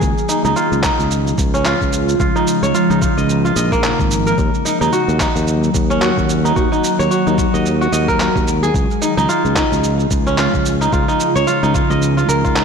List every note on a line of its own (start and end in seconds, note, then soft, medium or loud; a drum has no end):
0.00 0.13 C#2 medium
0.00 4.34 C#3 medium
0.00 4.34 F3 medium
0.00 4.34 G#3 medium
0.00 0.16 D#4 medium
0.00 2.17 F4 medium
0.00 0.55 F#4 medium
0.00 1.27 G#4 loud
0.00 0.63 A#4 loud
0.00 0.27 D#5 medium
0.00 kick loud
0.00 cabasa soft
0.18 cabasa soft
0.29 0.44 D#4 medium
0.29 cabasa medium
0.45 0.53 C#2 medium
0.45 0.83 D#4 medium
0.45 cabasa soft
0.56 1.65 F4 medium
0.56 cabasa soft
0.72 0.89 C#2 medium
0.72 cabasa soft
0.83 2.35 D#4 medium
0.83 kick loud
0.83 clap medium
0.83 cabasa medium
0.99 1.32 C#2 medium
0.99 cabasa soft
1.11 cabasa soft
1.27 cabasa soft
1.38 1.73 C#2 medium
1.38 kick loud
1.38 cabasa medium
1.54 3.28 C#4 medium
1.54 cabasa soft
1.65 2.19 F4 medium
1.65 clap medium
1.65 cabasa soft
1.81 2.14 C#2 medium
1.81 kick medium
1.81 cabasa soft
1.93 cabasa medium
2.09 cabasa soft
2.20 2.31 C#2 medium
2.20 4.36 D#4 medium
2.20 2.74 F4 medium
2.20 kick loud
2.20 cabasa soft
2.36 2.90 D#4 medium
2.36 cabasa soft
2.48 cabasa medium
2.63 2.71 C#2 medium
2.63 3.77 C#5 medium
2.63 cabasa soft
2.74 3.01 F4 medium
2.74 cabasa soft
2.90 3.07 C#2 medium
2.90 4.52 D#4 medium
2.90 cabasa soft
3.02 3.44 F4 medium
3.02 kick loud
3.02 cabasa medium
3.17 3.50 C#2 medium
3.17 3.56 D#5 medium
3.17 cabasa soft
3.30 cabasa soft
3.45 4.98 F4 medium
3.45 cabasa soft
3.56 3.91 A#1 medium
3.56 4.63 D#5 medium
3.56 cabasa medium
3.72 5.65 A#3 medium
3.72 kick medium
3.72 cabasa soft
3.84 clap medium
3.84 cabasa soft
3.99 4.32 G#1 medium
3.99 kick loud
3.99 cabasa soft
4.11 cabasa medium
4.27 5.54 A#4 medium
4.27 cabasa soft
4.38 4.49 D#2 medium
4.38 8.71 D#3 medium
4.38 8.71 F#3 medium
4.38 6.54 A#3 medium
4.38 8.71 F#4 medium
4.38 kick loud
4.38 cabasa soft
4.54 cabasa soft
4.65 4.81 D#4 medium
4.65 cabasa medium
4.81 4.89 D#2 medium
4.81 5.19 D#4 medium
4.81 cabasa soft
4.92 6.01 F#4 medium
4.92 cabasa soft
5.08 5.26 D#2 medium
5.08 cabasa soft
5.20 6.44 D#4 medium
5.20 kick loud
5.20 clap medium
5.20 cabasa medium
5.36 5.69 D#2 medium
5.36 cabasa soft
5.48 cabasa soft
5.64 cabasa soft
5.74 6.09 D#2 medium
5.74 kick loud
5.74 cabasa medium
5.90 7.64 C#4 medium
5.90 cabasa soft
6.01 6.56 F#4 medium
6.01 clap medium
6.01 cabasa soft
6.18 6.50 D#2 medium
6.18 kick medium
6.18 cabasa soft
6.30 cabasa medium
6.45 6.72 D#4 medium
6.45 cabasa soft
6.56 6.67 D#2 loud
6.56 8.72 G#3 medium
6.56 7.10 F#4 medium
6.56 kick loud
6.56 cabasa soft
6.72 7.26 D#4 medium
6.72 cabasa soft
6.84 cabasa medium
6.99 7.07 D#2 medium
6.99 8.14 C#5 medium
6.99 cabasa soft
7.11 7.38 F#4 medium
7.11 cabasa soft
7.27 7.44 D#2 medium
7.27 8.89 D#4 medium
7.27 cabasa soft
7.38 7.81 F#4 medium
7.38 kick medium
7.38 cabasa medium
7.54 7.87 D#2 medium
7.54 7.92 D#5 medium
7.54 cabasa soft
7.66 cabasa soft
7.81 9.27 F#4 medium
7.81 cabasa soft
7.92 8.28 D#2 medium
7.92 8.99 D#5 medium
7.92 cabasa medium
8.08 9.36 A#4 loud
8.08 kick medium
8.08 cabasa soft
8.20 clap medium
8.20 cabasa soft
8.36 8.69 D#2 medium
8.36 kick medium
8.36 cabasa soft
8.48 cabasa medium
8.63 9.99 G#4 loud
8.63 cabasa soft
8.74 8.85 C#2 medium
8.74 12.64 C#3 medium
8.74 12.64 F3 medium
8.74 12.64 G#3 medium
8.74 10.90 F4 medium
8.74 kick loud
8.74 cabasa soft
8.91 cabasa soft
9.02 9.17 D#4 medium
9.02 cabasa medium
9.17 9.25 C#2 medium
9.17 9.56 D#4 medium
9.17 cabasa soft
9.29 10.38 F4 medium
9.29 cabasa soft
9.45 9.62 C#2 medium
9.45 cabasa soft
9.56 10.81 D#4 loud
9.56 kick medium
9.56 clap medium
9.56 cabasa medium
9.72 10.05 C#2 medium
9.72 cabasa soft
9.84 cabasa soft
10.00 cabasa soft
10.11 10.46 C#2 loud
10.11 kick medium
10.11 cabasa medium
10.27 12.00 C#4 medium
10.27 cabasa soft
10.38 10.92 F4 medium
10.38 clap medium
10.38 cabasa soft
10.54 10.87 C#2 medium
10.54 kick medium
10.54 cabasa soft
10.66 cabasa medium
10.81 11.08 D#4 medium
10.81 cabasa soft
10.92 11.03 C#2 medium
10.92 12.64 D#4 medium
10.92 11.47 F4 medium
10.92 kick loud
10.92 cabasa soft
11.08 11.63 D#4 medium
11.08 cabasa soft
11.20 cabasa medium
11.36 11.44 C#2 medium
11.36 12.50 C#5 medium
11.36 cabasa soft
11.47 11.74 F4 medium
11.47 cabasa soft
11.63 11.80 C#2 medium
11.63 12.55 D#4 medium
11.63 cabasa soft
11.74 12.17 F4 medium
11.74 kick loud
11.74 cabasa medium
11.90 12.23 C#2 medium
11.90 12.64 D#5 medium
11.90 cabasa soft
12.02 cabasa soft
12.17 12.44 F4 medium
12.17 cabasa soft
12.29 12.64 C#2 medium
12.29 12.64 A#4 medium
12.29 cabasa medium
12.44 12.64 F4 medium
12.44 kick medium
12.44 cabasa soft
12.56 12.64 D#4 medium
12.56 clap medium
12.56 cabasa soft